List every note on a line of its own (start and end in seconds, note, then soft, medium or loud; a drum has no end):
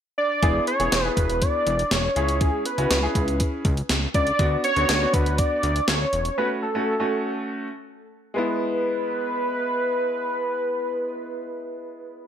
0.18 0.64 D5 loud
0.43 0.60 E1 loud
0.43 0.68 B3 medium
0.43 0.68 E4 medium
0.43 0.68 G#4 loud
0.43 kick loud
0.43 closed hi-hat medium
0.67 1.04 C#5 loud
0.67 closed hi-hat medium
0.80 0.89 E1 loud
0.80 0.97 B3 medium
0.80 0.97 E4 medium
0.80 0.97 G#4 medium
0.80 closed hi-hat medium
0.92 1.10 E1 loud
0.92 snare loud
0.92 closed hi-hat medium
1.04 1.72 B3 medium
1.04 1.72 E4 medium
1.04 1.72 G#4 medium
1.04 1.17 B4 loud
1.17 1.43 E1 medium
1.17 1.43 B4 medium
1.17 kick medium
1.17 closed hi-hat medium
1.30 closed hi-hat soft
1.42 1.93 D5 loud
1.42 kick medium
1.42 closed hi-hat medium
1.67 1.84 E1 loud
1.67 closed hi-hat medium
1.79 closed hi-hat medium
1.91 2.09 E1 loud
1.91 2.43 C#5 loud
1.91 snare loud
1.91 closed hi-hat medium
2.16 2.51 C#2 loud
2.16 2.66 C#4 medium
2.16 2.66 E4 medium
2.16 2.66 G#4 medium
2.16 closed hi-hat medium
2.28 closed hi-hat medium
2.41 2.67 G#4 medium
2.41 kick loud
2.41 closed hi-hat medium
2.66 3.40 B4 medium
2.66 closed hi-hat medium
2.78 2.87 C#2 medium
2.78 2.95 C#4 medium
2.78 2.95 E4 medium
2.78 2.95 F#4 medium
2.78 closed hi-hat medium
2.90 3.08 C#2 loud
2.90 snare loud
2.90 closed hi-hat medium
3.03 3.70 C#4 medium
3.03 3.70 E4 medium
3.03 3.70 G#4 medium
3.15 3.41 C#2 loud
3.15 kick medium
3.15 closed hi-hat medium
3.28 closed hi-hat soft
3.40 kick medium
3.40 closed hi-hat medium
3.65 3.82 C#2 loud
3.65 kick loud
3.65 closed hi-hat medium
3.77 closed hi-hat medium
3.89 4.07 C#2 medium
3.89 snare loud
3.89 closed hi-hat medium
4.14 4.32 C#2 medium
4.14 4.61 D5 loud
4.14 kick medium
4.14 closed hi-hat medium
4.27 closed hi-hat medium
4.39 4.57 D2 loud
4.39 4.64 B3 medium
4.39 4.64 D4 medium
4.39 4.64 F#4 medium
4.39 kick loud
4.39 closed hi-hat medium
4.64 5.15 C#5 loud
4.64 closed hi-hat medium
4.76 4.85 D2 medium
4.76 4.93 B3 medium
4.76 4.93 D4 medium
4.76 4.93 F#4 medium
4.76 closed hi-hat medium
4.89 5.06 D2 loud
4.89 snare loud
4.89 closed hi-hat medium
5.01 5.68 B3 medium
5.01 5.68 D4 medium
5.01 5.68 F#4 medium
5.14 5.40 D2 medium
5.14 5.40 B4 loud
5.14 kick medium
5.14 closed hi-hat medium
5.26 closed hi-hat soft
5.38 5.90 D5 loud
5.38 kick medium
5.38 closed hi-hat medium
5.63 5.81 D2 medium
5.63 closed hi-hat medium
5.76 closed hi-hat soft
5.88 6.05 D2 medium
5.88 6.37 C#5 loud
5.88 snare loud
5.88 closed hi-hat medium
6.13 6.30 E1 medium
6.13 closed hi-hat medium
6.25 closed hi-hat medium
6.38 6.63 A3 medium
6.38 6.63 C#4 medium
6.38 6.63 F#4 medium
6.38 6.49 B4 loud
6.62 7.33 A4 medium
6.75 6.92 A3 medium
6.75 6.92 C#4 medium
6.75 6.92 F#4 medium
7.00 7.67 A3 medium
7.00 7.67 C#4 medium
7.00 7.67 F#4 medium
8.34 12.27 G#3 medium
8.34 12.27 B3 medium
8.34 12.27 E4 medium
8.34 12.27 B4 loud